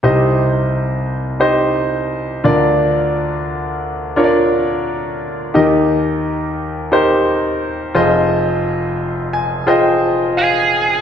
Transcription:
<<
  \new Staff \with { instrumentName = "Lead electric guitar" } { \time 4/4 \key c \minor \tempo 4 = 87 r1 | r1 | r1 | r2. aes'4 | }
  \new Staff \with { instrumentName = "Grand piano" } { \time 4/4 \key c \minor << { r1 | r1 | r1 | r4. aes''8 g''4 f''4 | } \\ { <ees' g' c'' ees''>4. r8 <ees' g' c'' ees''>4. <d' f' bes' d''>8~ | <d' f' bes' d''>4 r4 <d' f' bes' des'' d''>4. r8 | <ees' g' bes' ees''>4. r8 <ees' g' bes' c''>4. <f' aes' c'' ees''>8~ | <f' aes' c'' ees''>4 r4 <f' aes' c'' ees''>4. r8 | } >> }
  \new Staff \with { instrumentName = "Grand piano" } { \clef bass \time 4/4 \key c \minor <c, c>2.~ <c, c>8 <d, d>8~ | <d, d>2.~ <d, d>8 r8 | <ees, ees>2.~ <ees, ees>8 <f,, f,>8~ | <f,, f,>2.~ <f,, f,>8 r8 | }
>>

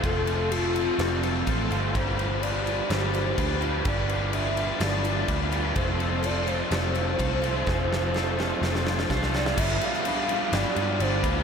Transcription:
<<
  \new Staff \with { instrumentName = "Soft synth lead" } { \time 4/4 \key g \mixolydian \tempo 4 = 126 a'4 f'2 r4 | c''4 d''4 c''4. r8 | d''4 e''4 d''4. r8 | c''4 d''8 c''2~ c''8~ |
c''2. r8 d''8 | e''8 f''4. d''4 c''4 | }
  \new Staff \with { instrumentName = "Overdriven electric guitar" } { \time 4/4 \key g \mixolydian <f a c' f' a'>8 <c' f' a'>8 <a c' f' a'>8 <c' f' a'>8 <f a c' f' a'>8 <c' f' a'>8 <a c' f' a'>8 <c' f' a'>8 | <g d' f' b'>8 <d' f' b'>8 <g d' f' b'>8 <d' f' b'>8 <g d' f' b'>8 <d' f' b'>8 <g d' f' b'>8 <d' f' b'>8 | <g d' f' b'>8 <d' f' b'>8 <g d' f' b'>8 <d' f' b'>8 <g d' f' b'>8 <d' f' b'>8 <g d' f' b'>8 <d' f' b'>8 | <f a c' f' a'>8 <c' f' a'>8 <a c' f' a'>8 <c' f' a'>8 <f a c' f' a'>8 <c' f' a'>8 <a c' f' a'>8 <c' f' a'>8 |
<f a c' f' a'>8 <c' f' a'>8 <a c' f' a'>8 <c' f' a'>8 <f a c' f' a'>8 <c' f' a'>8 <a c' f' a'>8 <c' f' a'>8 | <g d' f' b'>4 <g d' f' b'>4 <g d' f' b'>4. <d' f' b'>8 | }
  \new Staff \with { instrumentName = "Twelve-string acoustic guitar" } { \time 4/4 \key g \mixolydian <a d' f' c''>4 c''8 f'8 d'8 f'8 c''8 f'8 | d'4. f'8 d'8 f'4 f'8 | d'4. f'8 d'8 f'4 f'8 | a4 c''8 f'8 d'8 f'8 c''8 f'8 |
a4 c''8 f'8 d'8 f'8 c''8 f'8 | d'4 d'8 d'8 d'8 f'4 d'8 | }
  \new Staff \with { instrumentName = "Overdriven electric guitar" } { \clef bass \time 4/4 \key g \mixolydian <f, c f a c' f'>2.~ <f, c f a c' f'>8 <f, c f a c' f'>8 | <g, d f g b g'>2.~ <g, d f g b g'>8 <g, d f g b g'>8 | <g, d f g b g'>2.~ <g, d f g b g'>8 <g, d f g b g'>8 | <f, c f a c' f'>2.~ <f, c f a c' f'>8 <f, c f a c' f'>8 |
<f, c f a c' f'>2.~ <f, c f a c' f'>8 <f, c f a c' f'>8 | <g, d f b d' g'>4 <f b d' g'>8 <f b d' g'>8 <g, d f b d' g'>4 <f b d' g'>4 | }
  \new Staff \with { instrumentName = "Picked electric bass" } { \clef bass \time 4/4 \key g \mixolydian f,,2 f,,4 a,,8 g,,8 | g,,2 g,,4 d,4 | g,,2 g,,4 d,4 | f,,2 f,,4 c,4 |
f,,2 f,,4 c,4 | g,,8 r4. g,,16 r16 g,8 g,,8 d,8 | }
  \new DrumStaff \with { instrumentName = "Drums" } \drummode { \time 4/4 <cymc bd>8 cymc8 cymc8 cymc8 <cymc sn>8 cymc8 <cymc bd>8 cymc8 | <cymc bd>8 cymc8 cymc8 cymc8 <cymc sn>8 cymc8 <cymc bd>8 cymc8 | <cymc bd>8 cymc8 cymc8 cymc8 <cymc sn>8 cymc8 <cymc bd>8 cymc8 | <cymc bd>8 cymc8 cymc8 cymc8 <cymc sn>8 cymc8 <cymc bd>8 cymc8 |
<bd sn>8 sn8 sn8 sn8 sn16 sn16 sn16 sn16 <bd sn>16 sn16 sn16 sn16 | <cymc bd>8 cymc16 sn16 cymc8 cymc8 <cymc sn>8 cymc8 cymc8 <cymc bd>8 | }
>>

